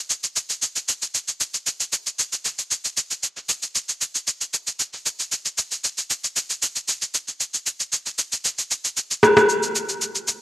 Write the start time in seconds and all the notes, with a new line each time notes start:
0.10 shaker
0.24 shaker
0.36 shaker
0.50 shaker
0.62 shaker
0.76 shaker
0.88 shaker
1.02 shaker
1.15 shaker
1.28 shaker
1.41 shaker
1.54 shaker
1.67 shaker
1.80 shaker
1.93 shaker
2.06 shaker
2.19 shaker
2.33 shaker
2.45 shaker
2.59 shaker
2.71 shaker
2.85 shaker
2.97 shaker
3.11 shaker
3.23 shaker
3.37 shaker
3.49 shaker
3.63 shaker
3.75 shaker
3.89 shaker
4.01 shaker
4.15 shaker
4.28 shaker
4.41 shaker
4.54 shaker
4.67 shaker
4.80 shaker
4.93 shaker
5.06 shaker
5.20 shaker
5.32 shaker
5.46 shaker
5.58 shaker
5.71 shaker
5.84 shaker
5.98 shaker
6.10 shaker
6.24 shaker
6.36 shaker
6.50 shaker
6.62 shaker
6.76 shaker
6.88 shaker
7.02 shaker
7.15 shaker
7.28 shaker
7.41 shaker
7.54 shaker
7.67 shaker
7.80 shaker
7.93 shaker
8.06 shaker
8.19 shaker
8.33 shaker
8.45 shaker
8.59 shaker
8.71 shaker
8.85 shaker
8.97 shaker
9.11 shaker
9.23 cross-stick, shaker
9.37 cross-stick, shaker
9.49 shaker
9.63 shaker
9.75 shaker
9.89 shaker
10.02 shaker
10.15 shaker
10.28 shaker